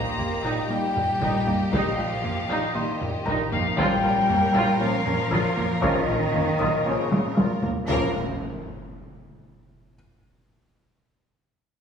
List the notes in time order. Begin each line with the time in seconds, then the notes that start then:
Already playing: A#3 G4 C5 D#5 A#5 C6, sub drop
0.18 A#1 A#3, taiko low-mid
0.43 A#1 A#2 D#4
0.69 A#1 G3 A#3 D#4 G5
0.95 A#1 A#2 A#3, taiko low-mid
1.21 A#1 A#2 D#4, taiko
1.47 A#1 A#3 D#4, taiko low-mid
1.72 A#1 A#2 F3 G3 D#4 F5, taiko
1.98 A#1 A#2 D#4
2.23 A#1 A#3, taiko low-mid
2.49 A#1 A#2 D#4
2.74 A#1 D#3 G3 A#3 D#4 D#5 C6
3.00 A#1 A#2 A#3, taiko low-mid
3.26 A#1 A#2 D#4 A#4 A#5, taiko
3.52 A#1 F3 A#3 D#4 F5, taiko low-mid
3.77 A#1 A#2 F3 G3 C#4 F4 A#4 C#5 G5, taiko
4.03 A#1 A#2 F4
4.29 A#1 A#3 C#4, taiko low-mid
4.54 A#1 A#2 F4
4.80 A#1 F3 A#3 C#4 F4 F5
5.06 A#1 A#2 C#4, taiko low-mid
5.31 A#1 A#2 F4, taiko
5.57 A#1 A#3 F4, taiko low-mid
5.82 A#1 A#2 D#3 F3 C#4 F4 C#5 D#5 C#6, taiko
6.08 A#1 A#2 F4
6.34 A#1 A#3 C#4, taiko low-mid
6.59 A#1 A#2 F4 D#6
6.85 A#1 C#3 F3 A#3 C#4 F4 C#5
7.11 A#1 A#2 C#4, taiko high
7.36 A#1 A#2 F4, taiko high
7.62 A#1 A#3 F4, taiko low
7.87 A#1 F3 A#3 C#4 F4 A#4 C#5, taiko low, impact